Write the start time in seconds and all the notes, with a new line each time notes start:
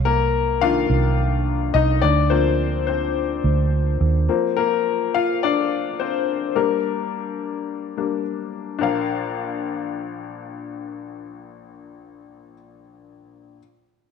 Already playing: C2
0.05 A#3 A#4
0.61 D#3 A#3 D4 F4 F5
0.90 C2
1.74 C2 D#4 D#5
2.02 D2 D4 D5
2.30 F3 A#3 C4 D4 C5
2.87 C4 C5
3.44 D2
4.01 D#2
4.29 F3 A#3 C4
4.57 A#3 A#4
5.14 F4 F5
5.43 D4 D5
6.00 C4 C5
6.55 G3 A#3 D4 A#4
7.97 G3 A#3 D4
8.79 A#1 D4 A#4
8.83 F5